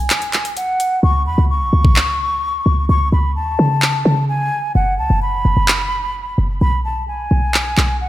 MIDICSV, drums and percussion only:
0, 0, Header, 1, 2, 480
1, 0, Start_track
1, 0, Tempo, 465116
1, 1065, Time_signature, 4, 2, 24, 8
1, 8346, End_track
2, 0, Start_track
2, 0, Title_t, "Drums"
2, 104, Note_on_c, 9, 42, 73
2, 105, Note_on_c, 9, 39, 120
2, 207, Note_off_c, 9, 42, 0
2, 208, Note_off_c, 9, 39, 0
2, 224, Note_on_c, 9, 42, 51
2, 328, Note_off_c, 9, 42, 0
2, 344, Note_on_c, 9, 42, 56
2, 345, Note_on_c, 9, 39, 93
2, 448, Note_off_c, 9, 39, 0
2, 448, Note_off_c, 9, 42, 0
2, 465, Note_on_c, 9, 42, 85
2, 568, Note_off_c, 9, 42, 0
2, 585, Note_on_c, 9, 42, 66
2, 688, Note_off_c, 9, 42, 0
2, 825, Note_on_c, 9, 42, 76
2, 928, Note_off_c, 9, 42, 0
2, 1905, Note_on_c, 9, 36, 94
2, 2008, Note_off_c, 9, 36, 0
2, 2025, Note_on_c, 9, 39, 124
2, 2128, Note_off_c, 9, 39, 0
2, 3945, Note_on_c, 9, 39, 122
2, 4048, Note_off_c, 9, 39, 0
2, 5865, Note_on_c, 9, 39, 122
2, 5968, Note_off_c, 9, 39, 0
2, 7785, Note_on_c, 9, 39, 122
2, 7888, Note_off_c, 9, 39, 0
2, 8024, Note_on_c, 9, 39, 92
2, 8128, Note_off_c, 9, 39, 0
2, 8346, End_track
0, 0, End_of_file